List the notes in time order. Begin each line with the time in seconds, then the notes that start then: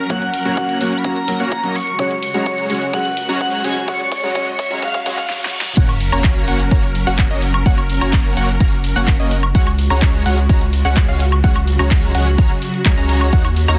Already playing: F#3 C#4 A#4 A#5, riser
0.09 F#1 F#3 A#3 C#4 F#4 C#5 F#5, kick, closed hi-hat
0.22 closed hi-hat
0.34 open hi-hat
0.45 F#1 F#3 A#3 C#4 F#4 C#5 A#5, closed hi-hat
0.57 kick, closed hi-hat
0.69 closed hi-hat
0.80 F#1 F#3 A#3 C#4 F#4 C#5 F#5, open hi-hat
0.93 closed hi-hat
0.97 B5
1.04 F#1 F#3 A#3 C#4 F#4 C#5 A#5, kick, closed hi-hat
1.16 closed hi-hat
1.28 F#3 A#3 C#4 F#4, open hi-hat
1.40 F#1 A#3 C#4 F#4 C#5 F#5, closed hi-hat
1.52 A#5, kick, closed hi-hat
1.63 F#1 F#3 A#3 C#4 F#4 C#5 D#5, closed hi-hat
1.75 C#6, open hi-hat
1.87 closed hi-hat
1.98 C#2 C#3 F#3 G#3 C#4 F#4 C#5 F#5, kick, closed hi-hat
2.11 closed hi-hat
2.23 open hi-hat
2.34 C#2 C#3 F#3 G#3 C#4 F#4 C#5 A#5, closed hi-hat
2.46 kick, closed hi-hat
2.58 closed hi-hat
2.69 C#2 C#3 F#3 G#3 C#4 F#4 C#5 F#5, open hi-hat
2.82 closed hi-hat
2.93 C#2 C#3 F#3 G#3 C#4 F#4 C#5 F#5, kick, closed hi-hat
3.05 closed hi-hat
3.17 open hi-hat
3.28 C#2 C#3 F#3 G#3 C#4 F#4 C#5 A#5, closed hi-hat
3.41 F#5, kick, closed hi-hat
3.53 closed hi-hat
3.64 C#2 C#3 F#3 G#3 C#4 F#4 C#5 F#5 G#5, open hi-hat
3.76 closed hi-hat
3.87 C#2 C#3 F#3 G#3 C#4 F#4 C#5 F#5, kick, closed hi-hat
4.00 closed hi-hat
4.12 kick, open hi-hat
4.23 C#2 C#3 F#3 G#3 C#4 F#4 C#5 A#5, closed hi-hat
4.35 C#2 C#3 F#3 G#3 C#4 F#4 C#5 F#5, kick, closed hi-hat
4.47 closed hi-hat
4.59 kick, open hi-hat
4.70 C#2 C#3 F#3 G#3 C#4 F#4 C#5 A#5, closed hi-hat
4.82 C#2 C#3 F#3 G#3 C#4 F#4 C#5 F5 F#5, kick, closed hi-hat, reverse cymbal
4.94 kick, closed hi-hat
5.05 C#2 C#3 F#3 G#3 C#4 F#4 C#5 F#5, kick, open hi-hat
5.18 kick, closed hi-hat
5.30 snare
5.45 snare
5.61 snare
5.77 F#1 F#3 A#3 C#4 F#4 A#4 C#5 F#5, kick, closed hi-hat, crash, sub drop
5.89 closed hi-hat, high woodblock
6.00 open hi-hat
6.12 F#1 A#3 C#4 F#4 C#5 A#5, closed hi-hat, high woodblock
6.24 kick, clap, closed hi-hat
6.36 closed hi-hat
6.48 F#1 A#3 C#4 F#4 C#5 F#5, open hi-hat
6.60 closed hi-hat
6.71 F#1 A#3 C#4 F#4 C#5 A#5, kick, closed hi-hat
6.83 closed hi-hat
6.95 open hi-hat
7.07 F#1 A#3 C#4 F#4 C#5 F#5, closed hi-hat
7.19 kick, clap, closed hi-hat
7.30 F#1 A#3 C#4 F#4 C#5 D#5, closed hi-hat
7.42 open hi-hat
7.54 closed hi-hat, high woodblock
7.66 F#1 A#3 C#4 F#4 C#5 F#5, kick, closed hi-hat
7.78 closed hi-hat, high woodblock
7.90 open hi-hat
8.01 F#1 A#3 C#4 F#4 C#5 A#5, closed hi-hat, high woodblock
8.13 kick, clap, closed hi-hat
8.25 closed hi-hat
8.37 F#1 A#3 C#4 F#4 C#5 F#5, open hi-hat
8.49 closed hi-hat
8.60 F#1 A#3 C#4 F#4 C#5 A#5, kick, closed hi-hat
8.72 closed hi-hat
8.84 open hi-hat
8.96 F#1 A#3 C#4 F#4 C#5 F#5, closed hi-hat
9.08 kick, clap, closed hi-hat
9.19 F#1 A#3 C#4 F#4 C#5 D#5, closed hi-hat
9.31 open hi-hat
9.43 closed hi-hat, high woodblock
9.55 C#2 C#3 G#3 C#4 F#4 C#5 F#5, kick, closed hi-hat
9.67 closed hi-hat, high woodblock
9.79 open hi-hat
9.90 C#2 G#3 C#4 F#4 C#5 A#5, closed hi-hat, high woodblock
10.02 kick, clap, closed hi-hat
10.14 closed hi-hat
10.26 C#2 G#3 C#4 F#4 C#5 F#5, open hi-hat
10.38 closed hi-hat
10.49 C#2 G#3 C#4 F#4 C#5 A#5, kick, closed hi-hat
10.61 closed hi-hat
10.73 open hi-hat
10.85 C#2 G#3 C#4 F#4 C#5 F#5, closed hi-hat
10.97 kick, clap, closed hi-hat
11.08 C#2 G#3 C#4 F#4 C#5 F5, closed hi-hat
11.20 open hi-hat
11.32 closed hi-hat, high woodblock
11.44 C#2 F#3 G#3 C#4 F#4 C#5 F#5, kick, closed hi-hat
11.56 closed hi-hat, high woodblock
11.67 open hi-hat
11.79 C#2 G#3 C#4 F#4 C#5 A#5, closed hi-hat, high woodblock
11.91 kick, clap, closed hi-hat
12.03 closed hi-hat
12.15 C#2 G#3 C#4 F#4 C#5 F#5, open hi-hat
12.27 closed hi-hat
12.38 C#2 G#3 C#4 F#4 C#5 A#5, kick, closed hi-hat
12.50 closed hi-hat
12.62 open hi-hat
12.74 closed hi-hat
12.86 C#2 G#3 C#4 F#4 C#5 A#5, kick, clap, closed hi-hat
12.97 C#2 G#3 C#4 F#4 C#5 A#5, closed hi-hat
13.09 open hi-hat
13.21 high woodblock
13.33 D#2 D#3 A#3 C#4 D#4 F#4 C#5 F#5, kick, closed hi-hat
13.45 closed hi-hat, high woodblock
13.56 open hi-hat
13.68 D#2 A#3 D#4 F#4 C#5 A#5, closed hi-hat, high woodblock